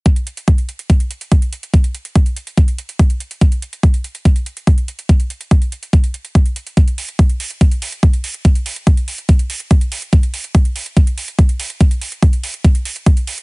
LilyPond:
\new DrumStaff \with { instrumentName = "Drums" } \drummode { \time 4/4 \tempo 4 = 143 <hh bd>16 hh16 hh16 hh16 <hh bd>16 hh16 hh16 hh16 <hh bd>16 hh16 hh16 hh16 <hh bd>16 hh16 hh16 hh16 | <hh bd>16 hh16 hh16 hh16 <hh bd>16 hh16 hh16 hh16 <hh bd>16 hh16 hh16 hh16 <hh bd>16 hh16 hh16 hh16 | <hh bd>16 hh16 hh16 hh16 <hh bd>16 hh16 hh16 hh16 <hh bd>16 hh16 hh16 hh16 <hh bd>16 hh16 hh16 hh16 | <hh bd>16 hh16 hh16 hh16 <hh bd>16 hh16 hh16 hh16 <hh bd>16 hh16 hh16 hh16 <hh bd>16 hh16 hh16 hh16 |
<hh bd>16 hh16 hho16 hh16 <hh bd>16 hh16 hho16 hh16 <hh bd>16 hh16 hho16 hh16 <hh bd>16 hh16 hho16 hh16 | <hh bd>16 hh16 hho16 hh16 <hh bd>16 hh16 hho16 hh16 <hh bd>16 hh16 hho16 hh16 <hh bd>16 hh16 hho16 hh16 | <hh bd>16 hh16 hho16 hh16 <hh bd>16 hh16 hho16 hh16 <hh bd>16 hh16 hho16 hh16 <hh bd>16 hh16 hho16 hh16 | <hh bd>16 hh16 hho16 hh16 <hh bd>16 hh16 hho16 hh16 <hh bd>16 hh16 hho16 hh16 <hh bd>16 hh16 hho16 hh16 | }